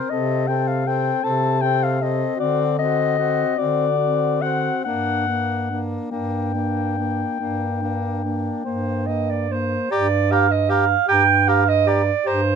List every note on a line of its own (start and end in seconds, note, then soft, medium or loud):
0.00 0.11 A#4 soft
0.00 0.11 C5 medium
0.10 1.12 C3 medium
0.10 0.47 C4 medium
0.10 0.48 A4 soft
0.10 0.49 D#5 medium
0.47 0.86 C4 soft
0.47 0.85 A4 soft
0.47 0.69 G5 medium
0.68 0.89 F5 medium
0.85 1.23 C4 soft
0.85 1.22 A4 soft
0.85 1.26 G5 medium
1.23 2.26 C3 medium
1.23 1.62 C4 soft
1.23 1.59 A4 medium
1.23 1.63 A5 medium
1.60 2.01 C4 soft
1.60 1.99 A4 soft
1.60 1.85 G5 medium
1.83 2.04 F5 medium
1.99 2.39 C4 soft
1.99 2.35 A4 soft
1.99 2.40 D#5 medium
2.36 3.45 D3 medium
2.36 2.64 F#4 medium
2.40 2.78 C4 soft
2.40 2.78 D5 medium
2.77 3.18 C4 soft
2.77 3.17 F#4 medium
2.77 3.60 D#5 medium
3.18 3.58 C4 soft
3.18 3.56 F#4 medium
3.57 4.71 D3 medium
3.57 3.88 C4 soft
3.57 3.97 F#4 soft
3.57 4.43 D5 medium
3.98 4.42 C4 soft
3.98 4.41 F#4 soft
4.41 4.85 C4 soft
4.41 4.83 F#4 soft
4.41 4.84 F#5 medium
4.84 5.99 G2 soft
4.84 5.26 A#3 soft
4.84 5.27 D4 soft
4.84 5.80 F#5 medium
5.27 5.69 A#3 soft
5.27 5.70 D4 soft
5.71 6.10 A#3 soft
5.71 6.11 D4 soft
6.11 7.24 G2 soft
6.11 6.53 A#3 soft
6.11 6.51 D4 soft
6.11 9.45 G5 medium
6.52 6.96 A#3 soft
6.52 6.95 D4 soft
6.96 7.39 A#3 soft
6.96 7.38 D4 soft
7.39 8.51 G2 soft
7.39 7.82 A#3 soft
7.39 7.81 D4 soft
7.82 8.23 A#3 soft
7.82 8.23 D4 soft
8.24 8.64 A#3 soft
8.24 8.64 D4 soft
8.65 9.77 G2 soft
8.65 9.07 A#3 soft
8.65 9.07 C5 medium
9.06 9.49 A#3 soft
9.06 9.31 D#5 medium
9.30 9.53 D5 medium
9.50 9.90 A#3 soft
9.50 9.93 C5 medium
9.91 10.96 G2 medium
9.91 10.07 G4 medium
9.91 10.33 D5 medium
9.91 10.07 A#5 medium
10.31 10.47 G4 medium
10.31 10.53 F5 medium
10.31 10.48 A#5 medium
10.52 10.71 D#5 medium
10.69 10.85 G4 medium
10.69 11.08 F5 medium
10.69 10.87 A#5 medium
11.08 12.12 G2 medium
11.08 11.24 G4 medium
11.08 11.49 G5 loud
11.08 11.26 A#5 medium
11.48 11.64 G4 medium
11.48 11.70 F5 medium
11.48 11.65 A#5 medium
11.69 11.89 D#5 medium
11.87 12.03 G4 medium
11.87 12.28 D5 medium
11.87 12.04 A#5 soft
12.25 12.55 G2 medium
12.25 12.41 G4 medium
12.25 12.55 C5 medium
12.25 12.43 A#5 medium